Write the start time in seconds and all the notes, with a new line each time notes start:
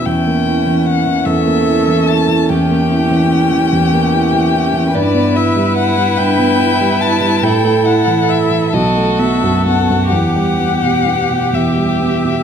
0.05 E2 C#4 E4 G5
0.27 A#3
0.46 E4
0.67 E3
0.86 E4 F#5
1.06 E3
1.25 E2 A4 E5
1.46 A#3
1.67 E4
1.88 E3
2.07 E4 A5
2.28 E3
2.49 E2 G4 G5
2.70 A#3
2.90 E4
3.11 E3
3.32 E4
3.52 E3
3.71 E2 G4
3.92 A#3
4.13 E4
4.33 E3
4.54 E4
4.74 E3
4.94 G2 E4 B4 D5
5.15 B3
5.35 E4 E5
5.56 G3
5.76 E4 F#5
5.97 G3
6.18 G2 G5
6.39 B3
6.59 E4
6.80 G3
7.00 E4 A5
7.21 G3
7.42 A2 A4 G5
7.64 A3
7.86 E4 F#5
8.07 E3
8.29 E4 E5
8.51 E3
8.72 B1 F#4 A4 D#5
8.96 A3
9.19 B3 E5
9.43 F#2
9.66 B3 F#5
9.90 F#2
10.11 E2 G4 F#5
10.36 G3
10.59 B3
10.83 B2
11.06 B3
11.30 B2
11.53 E2 E5
11.77 G3
12.01 B3
12.25 B2